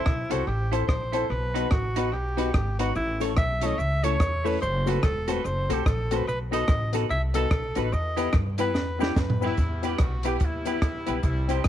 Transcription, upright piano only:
0.30 C4 E4 A4 C5
0.72 C4 E4 A4 C5
1.13 C4 E4 A4 C5
1.55 B3 D#4 F#4 B4
1.97 B3 D#4 F#4 B4
2.37 B3 D#4 F#4 B4
2.79 B3 D#4 F#4 B4
3.20 A3 C#4 E4 A4
3.62 A3 C#4 E4 A4
4.04 A3 C#4 E4 A4
4.44 A3 C#4 E4 A4
4.86 A3 C4 F#4 A4
5.27 A3 C4 F#4 A4
5.69 A3 C4 F#4 A4
6.11 A3 C4 F#4 A4
6.51 B3 D#4 F#4 A4
6.93 B3 D#4 F#4 A4
7.34 B3 D#4 F#4 A4
7.76 B3 D#4 F#4 A4
8.17 B3 E4 G4 B4
8.58 B3 E4 G4 B4
8.99 B3 E4 G4 B4
9.41 B3 E4 G4 B4
9.82 B3 E4 G4 B4
10.24 B3 E4 G4 B4
10.65 B3 E4 G4 B4
11.06 B3 E4 G4 B4
11.48 C4 E4 G4 C5

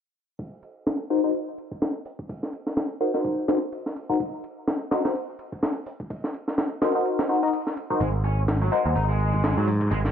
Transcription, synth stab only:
1.10 D#4 F#4 A#4 C5
1.24 D#4 F#4 A#4 C5
3.01 D#4 F#4 A#4 C5
3.14 D#4 F#4 A#4 C5
3.48 D#4 F#4 A#4 C5
4.09 D#4 F#4 A#4 C5
4.91 D#4 F#4 A#4 C5
5.05 D#4 F#4 A#4 C5
6.82 D#4 F#4 A#4 C5
6.95 D#4 F#4 A#4 C5
7.29 D#4 F#4 A#4 C5
7.43 D#4 F#4 A#4 D#5
7.90 D#4 F#4 A#4 C5
8.72 D#4 F#4 A#4 C5
8.85 D#4 F#4 A#4 C5

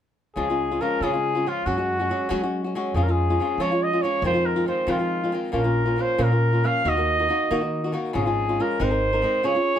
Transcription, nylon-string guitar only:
0.36 C#3 F3 G#3 C#4 F4
0.50 G#3 C#4 F4
0.71 G#3 C#4 F4
0.81 F3 G#3 C#4 F4
1.02 C#3 F3 G#3 C#4 F4
1.13 G#3 C#4 F4
1.35 G#3 C#4 F4
1.46 F3 G#3 C#4 F4
1.66 F#3 G#3 C#4 F#4
1.78 G#3 C#4 F#4
2.00 G#3 C#4 F#4
2.09 F#3 G#3 C#4 F#4
2.29 F#3 G#3 C#4 F#4
2.43 G#3 C#4 F#4
2.64 G#3 C#4 F#4
2.75 F#3 G#3 C#4 F#4
2.95 F3 G#3 C#4 F4
3.08 G#3 C#4 F4
3.30 G#3 C#4 F4
3.40 F3 G#3 C#4 F4
3.60 F3 G#3 C#4 F4
3.72 G#3 C#4 F4
3.93 G#3 C#4 F4
4.03 F3 G#3 C#4 F4
4.23 F2 C3 D#3 G#3 C4 F4
4.34 D#3 G#3 C4 F4
4.56 D#3 G#3 C4 F4
4.66 D#3 G#3 C4 F4
4.87 F2 C3 D#3 G#3 C4 F4
4.99 D#3 G#3 F4
5.24 D#3 G#3 C4 F4
5.32 D#3 G#3 C4 F4
5.52 A#2 F3 A#3 C#4 F4
5.64 A#3 C#4 F4
5.86 A#3 C#4 F4
5.96 F3 A#3 C#4 F4
6.18 A#2 F3 A#3 C#4 F4
6.32 A#3 C#4 F4
6.53 A#3 C#4 F4
6.64 F3 A#3 C#4 F4
6.84 D#3 A#3 D#4 F#4
6.97 A#3 D#4 F#4
7.19 A#3 D#4 F#4
7.28 D#3 A#3 D#4 F#4
7.51 D#3 A#3 D#4 F#4
7.61 A#3 D#4 F#4
7.84 A#3 D#4 F#4
7.92 D#3 A#3 D#4 F#4
8.13 G#2 C#3 F3 G#3 C#4 F4
8.26 F3 G#3 C#4 F4
8.49 F3 G#3 C#4 F4
8.59 F3 G#3 C#4 F4
8.79 G#3 C4 D#4 A#4
8.91 C4 D#4 A#4
9.13 C4 D#4 A#4
9.22 G#3 C4 D#4 A#4
9.43 C#3 G#3 C#4 F4 G#4
9.55 C#4 F4 G#4
9.76 G#4

